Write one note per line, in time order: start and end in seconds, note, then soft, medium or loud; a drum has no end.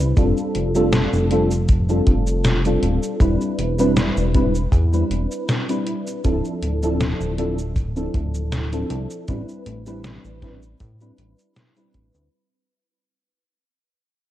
0.00 0.14 C2 loud
0.00 0.12 G3 medium
0.00 0.13 C4 medium
0.00 0.13 D4 medium
0.00 0.13 E4 medium
0.00 0.13 B4 medium
0.17 0.33 F1 loud
0.17 0.70 G3 medium
0.17 0.70 C4 medium
0.17 0.71 D4 medium
0.17 0.71 F4 medium
0.17 0.71 A4 medium
0.17 kick loud
0.17 closed hi-hat medium
0.17 cabasa soft
0.38 cabasa soft
0.55 1.07 F1 medium
0.55 closed hi-hat medium
0.75 1.26 G3 medium
0.75 1.27 C4 medium
0.75 1.27 D4 medium
0.75 1.27 F4 medium
0.75 1.27 A4 loud
0.75 cabasa medium
0.93 snare loud
0.93 closed hi-hat medium
0.93 cabasa soft
1.13 2.01 F1 medium
1.13 cabasa soft
1.30 1.49 G3 medium
1.30 1.50 C4 medium
1.30 1.50 D4 medium
1.30 1.50 F4 medium
1.30 1.50 A4 loud
1.30 closed hi-hat medium
1.51 cabasa medium
1.69 kick loud
1.69 closed hi-hat medium
1.69 cabasa soft
1.89 2.60 G3 medium
1.89 2.60 C4 medium
1.89 2.60 D4 medium
1.89 2.61 F4 medium
1.89 2.61 A4 medium
1.89 cabasa soft
2.07 2.77 F1 loud
2.07 kick loud
2.07 closed hi-hat medium
2.27 cabasa medium
2.45 snare loud
2.45 closed hi-hat medium
2.45 cabasa soft
2.65 3.16 G3 medium
2.65 3.17 C4 medium
2.65 3.17 D4 medium
2.65 3.17 F4 medium
2.65 3.17 A4 medium
2.65 closed hi-hat soft
2.65 cabasa soft
2.83 2.99 D1 loud
2.83 closed hi-hat medium
3.03 cabasa medium
3.20 3.37 E1 loud
3.20 3.74 G3 medium
3.20 3.74 C4 medium
3.20 3.74 D4 medium
3.20 3.75 E4 medium
3.20 3.75 B4 medium
3.20 kick loud
3.20 closed hi-hat medium
3.20 cabasa soft
3.41 cabasa soft
3.59 4.11 E1 medium
3.59 closed hi-hat medium
3.78 4.30 G3 loud
3.78 4.30 C4 medium
3.78 4.30 D4 medium
3.78 4.31 E4 medium
3.78 4.31 B4 loud
3.78 cabasa medium
3.97 snare loud
3.97 closed hi-hat medium
3.97 cabasa soft
4.17 4.67 E1 medium
4.17 cabasa soft
4.34 4.53 G3 medium
4.34 4.53 C4 medium
4.34 4.53 D4 medium
4.34 4.54 E4 medium
4.34 4.54 B4 loud
4.34 kick loud
4.34 closed hi-hat medium
4.55 cabasa medium
4.72 5.04 E2 loud
4.72 kick loud
4.72 closed hi-hat medium
4.72 cabasa soft
4.93 5.64 G3 medium
4.93 5.64 C4 medium
4.93 5.64 D4 medium
4.93 5.64 E4 medium
4.93 5.65 B4 medium
4.93 cabasa soft
5.10 5.27 E1 loud
5.10 closed hi-hat medium
5.32 cabasa medium
5.49 snare loud
5.49 closed hi-hat medium
5.49 cabasa soft
5.68 6.20 G3 medium
5.68 6.20 C4 medium
5.68 6.20 D4 medium
5.68 6.21 E4 medium
5.68 6.21 B4 medium
5.68 closed hi-hat soft
5.68 cabasa soft
5.87 closed hi-hat medium
6.07 cabasa medium
6.24 6.41 D1 loud
6.24 6.78 F3 medium
6.24 6.78 C4 medium
6.24 6.78 D4 medium
6.24 6.78 E4 medium
6.24 6.78 A4 loud
6.24 kick loud
6.24 closed hi-hat medium
6.24 cabasa soft
6.45 cabasa soft
6.62 7.15 D1 medium
6.62 closed hi-hat medium
6.82 7.34 F3 loud
6.82 7.34 C4 medium
6.82 7.34 D4 medium
6.82 7.34 E4 medium
6.82 7.35 A4 loud
6.82 cabasa medium
7.01 snare loud
7.01 closed hi-hat medium
7.01 cabasa soft
7.21 8.09 D1 medium
7.21 cabasa soft
7.38 7.57 F3 medium
7.38 7.57 C4 medium
7.38 7.57 D4 medium
7.38 7.57 E4 medium
7.38 7.57 A4 loud
7.38 closed hi-hat medium
7.59 cabasa medium
7.76 kick loud
7.76 closed hi-hat medium
7.76 cabasa soft
7.96 8.67 F3 medium
7.96 8.68 C4 medium
7.96 8.68 D4 medium
7.96 8.68 E4 medium
7.96 8.68 A4 medium
7.96 cabasa soft
8.14 8.85 D1 loud
8.14 kick medium
8.14 closed hi-hat medium
8.35 cabasa medium
8.52 snare loud
8.52 closed hi-hat medium
8.52 cabasa soft
8.72 9.24 F3 medium
8.72 9.24 C4 medium
8.72 9.24 D4 medium
8.72 9.24 E4 medium
8.72 9.25 A4 medium
8.72 closed hi-hat soft
8.72 cabasa soft
8.90 9.07 C2 loud
8.90 closed hi-hat medium
9.11 cabasa medium
9.28 9.45 A1 loud
9.28 9.82 G3 medium
9.28 9.82 C4 medium
9.28 9.82 D4 medium
9.28 9.82 E4 medium
9.28 9.82 B4 medium
9.28 kick loud
9.28 closed hi-hat medium
9.28 cabasa soft
9.49 cabasa soft
9.66 10.19 A1 medium
9.66 closed hi-hat medium
9.86 10.38 G3 loud
9.86 10.38 C4 medium
9.86 10.38 D4 medium
9.86 10.38 E4 medium
9.86 10.39 B4 loud
9.86 cabasa medium
10.04 snare loud
10.04 closed hi-hat medium
10.04 cabasa soft
10.25 10.75 A1 medium
10.25 cabasa soft
10.42 10.61 G3 loud
10.42 10.61 C4 medium
10.42 10.61 D4 medium
10.42 10.61 E4 medium
10.42 10.61 B4 loud
10.42 kick loud
10.42 snare medium
10.42 closed hi-hat medium
10.63 cabasa medium
10.80 11.12 A2 loud
10.80 kick loud
10.80 closed hi-hat medium
10.80 cabasa soft
11.00 11.72 G3 medium
11.00 11.72 C4 medium
11.00 11.72 D4 medium
11.00 11.72 E4 medium
11.00 11.72 B4 medium
11.00 cabasa soft
11.18 11.35 A1 loud
11.18 closed hi-hat medium
11.39 cabasa medium
11.56 snare loud
11.56 closed hi-hat medium
11.56 cabasa soft
11.76 12.28 G3 medium
11.76 12.28 C4 medium
11.76 12.28 D4 medium
11.76 12.28 E4 medium
11.76 12.28 B4 medium
11.76 closed hi-hat soft
11.76 cabasa soft
11.94 12.11 A1 medium
11.94 kick medium
11.94 closed hi-hat medium
12.15 12.29 D2 medium
12.15 cabasa medium